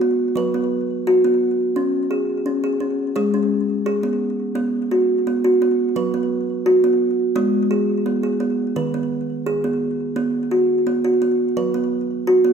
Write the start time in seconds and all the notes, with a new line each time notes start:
0.01 B3
0.36 F#3 B4
0.54 B3
1.07 F#4
1.24 B3
1.76 C#4
2.11 G#4
2.46 C#4
2.64 G#4
2.80 C#4
3.16 G#3 G#4
3.34 C#4
3.86 G#4
4.03 B3
4.55 B3
4.91 F#4
5.27 B3
5.44 F#4
5.62 B3
5.96 F#3 B4
6.14 B3
6.66 F#4
6.84 B3
7.36 G#3 B3
7.71 G#4
8.06 B3
8.23 G#4
8.40 B3
8.76 D#3 B4
8.94 B3
9.46 G#4
9.64 B3
10.16 B3
10.51 F#4
10.87 B3
11.05 F#4
11.22 B3
11.57 F#3 B4
11.74 B3
12.27 F#4
12.45 B3